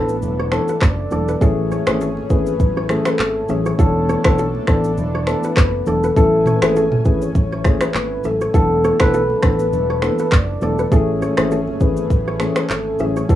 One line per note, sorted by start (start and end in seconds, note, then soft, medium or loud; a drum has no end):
0.00 0.24 A1 medium
0.00 0.16 E3 medium
0.00 1.39 E3 medium
0.00 0.16 B3 medium
0.00 1.39 B3 medium
0.00 0.16 D4 medium
0.00 1.39 D4 medium
0.00 0.16 A4 medium
0.00 1.39 A4 medium
0.00 0.52 B4 loud
0.09 high conga medium
0.09 shaker medium
0.22 0.58 E1 loud
0.22 low conga medium
0.22 shaker medium
0.39 0.49 C#5 medium
0.52 0.75 E3 medium
0.52 0.75 B3 medium
0.52 0.75 D4 medium
0.52 0.75 A4 medium
0.52 0.66 C#5 loud
0.52 finger snap medium
0.52 cross-stick medium
0.52 high conga medium
0.52 shaker medium
0.68 0.78 B4 medium
0.68 shaker medium
0.81 1.04 F#1 medium
0.81 0.94 C#5 medium
0.81 1.43 D5 loud
0.81 finger snap medium
0.81 kick loud
0.81 cross-stick medium
0.81 clap medium
0.81 high conga medium
0.81 shaker medium
1.11 1.34 E1 medium
1.11 1.34 E3 medium
1.11 1.34 B3 medium
1.11 1.35 D4 medium
1.11 1.35 A4 medium
1.11 1.23 D5 medium
1.11 high conga medium
1.11 low conga medium
1.11 shaker medium
1.28 1.38 B4 medium
1.28 shaker medium
1.41 1.76 A1 loud
1.41 1.83 E3 medium
1.41 13.35 E3 medium
1.41 1.83 A3 medium
1.41 3.76 A3 medium
1.41 3.76 C#4 medium
1.41 1.83 C#4 medium
1.41 3.76 G#4 medium
1.41 1.83 G#4 loud
1.41 1.53 A4 medium
1.41 2.33 C#5 loud
1.41 kick loud
1.41 low conga medium
1.41 shaker medium
1.71 1.83 C#5 medium
1.71 high conga medium
1.71 shaker medium
1.87 2.20 G#1 medium
1.87 2.09 E3 medium
1.87 2.09 A3 medium
1.87 2.09 C#4 medium
1.87 2.09 G#4 medium
1.87 1.97 B4 medium
1.87 finger snap medium
1.87 cross-stick loud
1.87 high conga medium
1.87 shaker medium
2.01 2.22 A4 medium
2.01 shaker medium
2.17 high conga medium
2.30 2.53 G#1 loud
2.30 2.53 E3 medium
2.30 2.53 A3 medium
2.30 2.53 C#4 medium
2.30 2.53 G#4 medium
2.30 2.90 B4 loud
2.30 kick loud
2.30 shaker medium
2.46 high conga medium
2.46 shaker medium
2.60 2.95 A1 loud
2.60 kick loud
2.60 low conga medium
2.60 shaker medium
2.77 2.86 C#5 medium
2.89 3.13 E3 medium
2.89 3.13 A3 medium
2.89 3.13 C#4 medium
2.89 3.13 G#4 medium
2.89 3.18 A4 loud
2.89 finger snap medium
2.89 cross-stick medium
2.89 high conga medium
2.89 shaker medium
3.05 3.16 B4 medium
3.05 finger snap medium
3.05 cross-stick loud
3.05 shaker medium
3.19 3.42 G#1 medium
3.19 3.51 A4 loud
3.19 3.31 C#5 medium
3.19 clap medium
3.19 high conga medium
3.19 shaker medium
3.48 3.72 A1 medium
3.48 3.72 E3 medium
3.48 3.72 A3 medium
3.48 3.72 C#4 medium
3.48 3.72 G#4 medium
3.48 4.68 C#5 loud
3.48 3.61 E5 medium
3.48 high conga medium
3.48 low conga medium
3.48 shaker medium
3.66 3.75 C#5 medium
3.66 shaker medium
3.78 4.14 E1 loud
3.78 4.21 E3 medium
3.78 4.21 B3 medium
3.78 6.14 B3 medium
3.78 4.21 D4 medium
3.78 6.14 D4 medium
3.78 6.14 A4 medium
3.78 4.21 A4 loud
3.78 3.91 A4 medium
3.78 kick loud
3.78 low conga medium
3.78 shaker medium
4.09 4.20 C#5 medium
4.09 high conga medium
4.09 shaker medium
4.24 4.58 B1 loud
4.24 4.46 E3 medium
4.24 4.46 B3 medium
4.24 4.46 D4 medium
4.24 4.47 A4 medium
4.24 4.35 B4 medium
4.24 finger snap medium
4.24 kick medium
4.24 cross-stick loud
4.24 high conga medium
4.24 shaker medium
4.38 4.60 A4 medium
4.38 shaker medium
4.55 high conga medium
4.67 4.99 A1 medium
4.67 4.91 E3 medium
4.67 4.91 B3 medium
4.67 4.91 D4 medium
4.67 4.91 A4 medium
4.67 5.46 D5 loud
4.67 finger snap medium
4.67 kick medium
4.67 cross-stick loud
4.67 shaker medium
4.84 high conga medium
4.84 shaker medium
4.97 5.33 E1 loud
4.97 low conga medium
4.97 shaker medium
5.15 5.24 C#5 medium
5.27 5.50 E3 medium
5.27 5.50 B3 medium
5.27 5.50 D4 medium
5.27 5.51 A4 medium
5.27 finger snap medium
5.27 cross-stick medium
5.27 high conga medium
5.27 shaker medium
5.43 5.89 B4 loud
5.43 5.54 B4 medium
5.43 shaker medium
5.56 5.80 F#1 medium
5.56 5.69 C#5 medium
5.56 finger snap medium
5.56 kick loud
5.56 cross-stick loud
5.56 clap loud
5.56 high conga medium
5.56 shaker medium
5.86 6.09 E1 loud
5.86 6.10 E3 medium
5.86 6.10 B3 medium
5.86 6.10 D4 medium
5.86 6.10 A4 medium
5.86 6.55 A4 loud
5.86 5.99 D5 medium
5.86 high conga medium
5.86 low conga medium
5.86 shaker medium
6.03 6.13 B4 medium
6.03 shaker medium
6.16 6.52 A1 loud
6.16 6.58 E3 medium
6.16 6.58 A3 medium
6.16 8.52 A3 medium
6.16 6.59 C#4 medium
6.16 8.52 C#4 medium
6.16 6.59 A4 loud
6.16 6.28 A4 medium
6.16 8.52 G#5 medium
6.16 kick loud
6.16 low conga medium
6.16 shaker medium
6.46 6.58 C#5 medium
6.46 mid tom medium
6.46 high conga medium
6.46 shaker medium
6.56 6.65 B4 medium
6.62 6.95 G#1 medium
6.62 6.84 E3 medium
6.62 6.84 A3 medium
6.62 6.84 C#4 medium
6.62 6.84 G#4 medium
6.62 7.08 A4 medium
6.62 6.72 B4 medium
6.62 finger snap medium
6.62 cross-stick loud
6.62 high conga medium
6.62 shaker medium
6.76 6.97 A4 medium
6.76 shaker medium
6.92 mid tom loud
6.92 high conga medium
7.05 7.28 G#1 medium
7.05 7.28 E3 medium
7.05 7.29 A3 medium
7.05 7.29 C#4 medium
7.05 7.29 G#4 medium
7.05 7.24 B4 loud
7.05 kick medium
7.05 shaker medium
7.22 7.95 C#5 loud
7.22 high conga medium
7.22 shaker medium
7.35 7.70 A1 loud
7.35 kick medium
7.35 low conga medium
7.35 shaker medium
7.52 7.61 C#5 medium
7.64 7.88 E3 medium
7.64 7.88 A3 medium
7.64 7.88 C#4 medium
7.64 7.88 G#4 medium
7.64 finger snap medium
7.64 kick loud
7.64 cross-stick medium
7.64 high conga medium
7.64 shaker medium
7.81 7.91 B4 medium
7.81 finger snap medium
7.81 cross-stick loud
7.81 shaker medium
7.94 8.17 G#1 loud
7.94 8.27 B4 loud
7.94 8.07 C#5 medium
7.94 clap medium
7.94 high conga medium
7.94 shaker medium
8.24 8.47 A1 medium
8.24 9.43 A4 loud
8.24 8.36 E5 medium
8.24 high conga medium
8.24 low conga medium
8.24 shaker medium
8.41 8.51 C#5 medium
8.41 shaker medium
8.54 8.89 E1 loud
8.54 8.96 E3 medium
8.54 8.96 B3 medium
8.54 10.89 B3 medium
8.54 8.96 D4 medium
8.54 10.89 D4 medium
8.54 10.89 A4 medium
8.54 8.96 A4 loud
8.54 8.66 A4 medium
8.54 kick loud
8.54 low conga medium
8.54 shaker medium
8.84 9.00 C#5 medium
8.84 high conga medium
8.84 shaker medium
9.00 9.33 B1 loud
9.00 9.21 E3 medium
9.00 9.22 B3 medium
9.00 9.22 D4 medium
9.00 9.22 A4 medium
9.00 10.19 B4 medium
9.00 finger snap medium
9.00 kick medium
9.00 cross-stick loud
9.00 high conga medium
9.00 shaker medium
9.14 9.35 A4 medium
9.14 shaker medium
9.30 high conga medium
9.43 9.74 A1 medium
9.43 9.66 E3 medium
9.43 9.66 B3 medium
9.43 9.66 D4 medium
9.43 9.66 A4 medium
9.43 10.34 B4 loud
9.43 finger snap medium
9.43 kick medium
9.43 cross-stick loud
9.43 shaker medium
9.59 high conga medium
9.59 shaker medium
9.73 10.08 E1 loud
9.73 low conga medium
9.73 shaker medium
9.90 9.99 C#5 medium
10.02 10.25 E3 medium
10.02 10.26 B3 medium
10.02 10.26 D4 medium
10.02 10.26 A4 medium
10.02 finger snap medium
10.02 cross-stick medium
10.02 high conga medium
10.02 shaker medium
10.19 10.29 B4 medium
10.19 shaker medium
10.32 10.55 F#1 medium
10.32 10.44 C#5 medium
10.32 10.94 D5 loud
10.32 finger snap medium
10.32 kick loud
10.32 cross-stick loud
10.32 clap loud
10.32 high conga medium
10.32 shaker medium
10.61 10.85 E1 medium
10.61 10.85 E3 medium
10.61 10.85 B3 medium
10.61 10.85 D4 medium
10.61 10.85 A4 medium
10.61 10.74 D5 medium
10.61 high conga medium
10.61 low conga medium
10.61 shaker medium
10.79 10.88 B4 medium
10.79 shaker medium
10.91 11.27 A1 loud
10.91 11.34 E3 medium
10.91 11.34 A3 medium
10.91 13.27 A3 medium
10.91 13.27 C#4 medium
10.91 11.34 C#4 medium
10.91 13.27 G#4 medium
10.91 11.34 G#4 loud
10.91 11.04 A4 medium
10.91 11.81 C#5 loud
10.91 kick loud
10.91 low conga medium
10.91 shaker medium
11.22 11.33 C#5 medium
11.22 high conga medium
11.22 shaker medium
11.37 11.71 G#1 medium
11.37 11.59 E3 medium
11.37 11.59 A3 medium
11.37 11.59 C#4 medium
11.37 11.59 G#4 medium
11.37 11.48 B4 medium
11.37 finger snap medium
11.37 cross-stick loud
11.37 high conga medium
11.37 shaker medium
11.51 11.72 A4 medium
11.51 shaker medium
11.67 high conga medium
11.80 12.04 G#1 medium
11.80 12.04 E3 medium
11.80 12.04 A3 medium
11.80 12.04 C#4 medium
11.80 12.04 G#4 medium
11.80 12.42 B4 loud
11.80 kick medium
11.80 shaker medium
11.97 high conga medium
11.97 shaker medium
12.10 12.46 A1 loud
12.10 kick loud
12.10 low conga medium
12.10 shaker medium
12.28 12.37 C#5 medium
12.40 12.63 E3 medium
12.40 12.63 A3 medium
12.40 12.63 C#4 medium
12.40 12.63 G#4 medium
12.40 12.72 C#5 loud
12.40 finger snap medium
12.40 cross-stick medium
12.40 high conga medium
12.40 shaker medium
12.56 12.66 B4 medium
12.56 finger snap medium
12.56 cross-stick loud
12.56 shaker medium
12.70 12.93 G#1 medium
12.70 13.02 A4 loud
12.70 12.82 C#5 medium
12.70 clap medium
12.70 high conga medium
12.70 shaker medium
12.99 13.22 A1 medium
12.99 13.22 E3 medium
12.99 13.23 A3 medium
12.99 13.23 C#4 medium
12.99 13.23 G#4 medium
12.99 13.35 C#5 loud
12.99 13.12 E5 medium
12.99 high conga medium
12.99 low conga medium
12.99 shaker medium
13.16 13.26 C#5 medium
13.16 shaker medium
13.29 13.35 E1 loud
13.29 13.35 E3 medium
13.29 13.35 B3 medium
13.29 13.35 D4 medium
13.29 13.35 A4 medium
13.29 13.35 A4 loud
13.29 13.35 A4 medium
13.29 kick loud
13.29 low conga medium
13.29 shaker medium